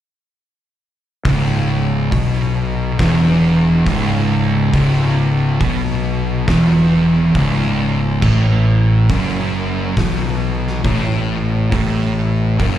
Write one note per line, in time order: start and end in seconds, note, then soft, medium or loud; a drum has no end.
1.25 2.08 C#1 medium
1.25 2.11 C#2 loud
1.25 kick loud
1.25 open hi-hat medium
2.12 2.96 B1 loud
2.12 2.99 B2 loud
2.12 kick loud
2.12 open hi-hat medium
2.99 3.83 E1 medium
2.99 3.85 E2 loud
2.99 kick loud
2.99 snare loud
2.99 open hi-hat medium
3.87 4.70 C#1 loud
3.87 4.72 C#2 loud
3.87 kick loud
3.87 open hi-hat medium
4.73 5.57 C#1 loud
4.73 5.60 C#2 loud
4.73 kick loud
4.73 open hi-hat medium
5.61 6.44 B1 loud
5.61 6.47 B2 loud
5.61 kick loud
5.61 open hi-hat medium
6.47 7.31 E1 loud
6.47 7.34 E2 loud
6.47 kick loud
6.47 snare loud
6.47 open hi-hat medium
7.35 8.19 C#1 loud
7.35 8.22 C#2 loud
7.35 kick loud
7.35 open hi-hat medium
8.22 9.06 A1 loud
8.22 9.09 A2 loud
8.22 kick medium
8.22 crash medium
9.09 9.93 F#1 loud
9.09 9.96 F#2 loud
9.09 kick loud
9.09 open hi-hat medium
9.97 10.81 B1 loud
9.97 10.84 B2 loud
9.97 kick loud
9.97 snare loud
9.97 open hi-hat medium
10.67 snare soft
10.84 11.68 A1 loud
10.84 11.71 A2 loud
10.84 kick loud
10.84 open hi-hat medium
11.72 12.56 A1 loud
11.72 12.58 A2 loud
11.72 kick loud
11.72 open hi-hat medium
12.58 12.78 F#1 medium
12.58 12.78 F#2 medium
12.58 kick loud
12.58 open hi-hat medium